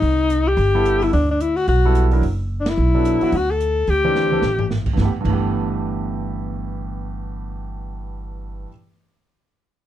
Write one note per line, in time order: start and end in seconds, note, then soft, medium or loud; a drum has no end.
0.00 0.55 C2 medium
0.00 0.49 D#4 loud
0.00 open hi-hat soft
0.30 closed hi-hat medium
0.48 1.05 G4 loud
0.57 1.09 G1 loud
0.57 open hi-hat soft
0.74 1.00 G3 medium
0.74 1.00 B3 medium
0.74 1.00 E4 medium
0.74 1.00 A4 medium
0.85 closed hi-hat medium
1.01 1.11 G3 medium
1.01 1.12 B3 medium
1.01 1.12 E4 medium
1.01 1.12 A4 medium
1.01 open hi-hat soft
1.13 1.65 D2 medium
1.13 1.28 D4 medium
1.13 open hi-hat soft
1.31 1.43 D4 medium
1.40 1.58 E4 medium
1.40 closed hi-hat medium
1.56 1.68 F#4 medium
1.56 open hi-hat soft
1.68 2.20 B1 medium
1.68 2.09 F#4 medium
1.68 open hi-hat soft
1.85 2.10 G3 medium
1.85 2.10 B3 medium
1.85 2.10 E4 medium
1.85 2.11 A4 medium
1.95 closed hi-hat medium
2.11 2.22 F#3 medium
2.11 2.22 D4 medium
2.11 2.22 E4 medium
2.11 2.22 A#4 medium
2.11 open hi-hat soft
2.22 2.74 F#1 medium
2.22 open hi-hat soft
2.61 2.71 D4 medium
2.66 3.38 E4 medium
2.66 snare medium
2.66 ride medium
2.77 3.18 B1 medium
2.94 3.20 F#3 medium
2.94 3.20 B3 medium
2.94 3.20 D4 medium
2.94 3.20 A4 medium
3.05 closed hi-hat medium
3.21 3.32 F#3 medium
3.21 3.32 B3 medium
3.21 3.32 D4 medium
3.21 3.32 F#4 medium
3.21 muted upright bass stroke soft
3.21 open hi-hat soft
3.32 3.85 D2 medium
3.32 open hi-hat soft
3.37 3.53 F#4 medium
3.51 3.92 A4 medium
3.60 closed hi-hat soft
3.87 4.40 D2 medium
3.87 4.72 G4 loud
3.87 open hi-hat soft
4.04 4.30 E3 medium
4.04 4.30 C4 medium
4.04 4.30 D4 medium
4.04 4.30 G4 medium
4.15 snare soft
4.32 4.42 E3 medium
4.32 4.42 C4 medium
4.32 4.42 D4 medium
4.32 4.42 A4 medium
4.42 4.83 A1 medium
4.42 snare medium
4.59 floor tom medium
4.71 snare medium
4.86 4.97 D2 medium
4.86 kick medium
4.86 crash medium
4.93 5.05 G2 medium
4.93 5.07 E3 medium
4.97 5.07 G1 medium
4.97 5.08 A3 medium
4.97 kick medium
4.97 snare medium
5.02 5.10 B3 medium
5.02 5.11 G4 medium
5.20 8.66 G2 medium
5.20 8.67 E3 medium
5.25 8.64 G1 medium
5.25 8.69 A3 medium
5.25 kick medium
5.25 crash medium
5.30 8.70 B3 medium
5.30 8.72 G4 medium